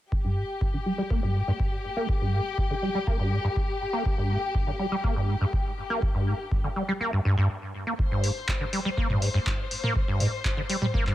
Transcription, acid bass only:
0.25 0.38 G2 medium
0.37 0.44 G#2 medium
0.74 0.78 D3 medium
0.86 0.93 G3 medium
0.98 1.02 G3 loud
1.10 1.21 A#3 loud
1.23 1.37 G2 medium
1.35 1.42 G#2 medium
1.48 1.52 G2 loud
1.97 2.07 A#3 loud
2.21 2.35 G2 medium
2.33 2.40 G#2 medium
2.70 2.74 D3 medium
2.82 2.89 G3 medium
2.95 2.99 G3 loud
3.07 3.17 A#3 loud
3.19 3.33 G2 medium
3.32 3.39 G#2 medium
3.44 3.48 G2 loud
3.93 4.03 A#3 loud
4.18 4.32 G2 medium
4.30 4.37 G#2 medium
4.67 4.71 D3 medium
4.79 4.86 G3 medium
4.92 4.96 G3 loud
5.04 5.14 A#3 loud
5.16 5.30 G2 medium
5.29 5.35 G#2 medium
5.41 5.45 G2 loud
5.90 6.00 A#3 loud
6.15 6.28 G2 medium
6.27 6.34 G#2 medium
6.64 6.68 D3 medium
6.76 6.83 G3 medium
6.88 6.92 G3 loud
7.01 7.11 A#3 loud
7.13 7.20 G2 medium
7.25 7.35 G2 loud
7.38 7.48 G2 loud
7.87 7.94 A#3 medium
8.11 8.25 G2 medium
8.24 8.30 G#2 medium
8.61 8.65 D3 medium
8.73 8.80 G3 medium
8.85 8.89 G3 loud
8.97 9.08 A#3 loud
9.10 9.23 G2 medium
9.22 9.29 G#2 medium
9.34 9.38 G2 loud
9.84 9.94 A#3 loud
10.08 10.22 G2 medium
10.20 10.27 G#2 medium
10.57 10.61 D3 medium
10.69 10.76 G3 medium
10.82 10.86 G3 loud
10.94 11.04 A#3 loud
11.06 11.15 G2 medium

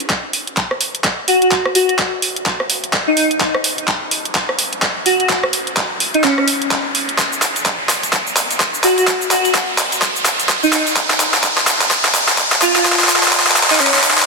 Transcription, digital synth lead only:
1.28 1.37 F#4 medium
1.42 1.48 F#4 medium
1.75 1.93 F#4 medium
3.07 3.13 D#4 medium
3.17 3.26 D#4 medium
5.06 5.15 F#4 medium
5.20 5.26 F#4 medium
6.14 6.22 D#4 medium
6.24 6.33 C#4 medium
6.38 6.44 C#4 medium
8.84 8.93 F#4 medium
8.98 9.04 F#4 medium
9.31 9.49 F#4 medium
10.63 10.69 D#4 medium
10.73 10.82 D#4 medium
12.62 12.71 F4 medium
12.76 12.82 F4 medium
13.70 13.78 D#4 medium
13.80 13.89 C#4 medium
13.94 14.00 C#4 medium

